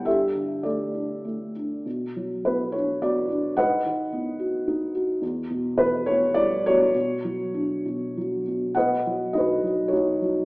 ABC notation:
X:1
M:3/4
L:1/8
Q:1/4=103
K:Bm
V:1 name="Felt piano"
[GAe]2 [GAd]3 z | z2 B c [Fd]2 | [B^df]4- [Bdf] z | z2 B c d [Fc]- |
[Fc]4- [Fc] z | [K:B] [Bdf]2 [FBd]2 [Fc]2 |]
V:2 name="Felt piano" clef=bass
G,, D, A, D A, D | B,, F, B, D B, D | ^G,, ^D, B, F ^D F | E,, B,, E, B, G, B, |
B,, F, D B,, F, B,, | [K:B] B,, F, D F, D F, |]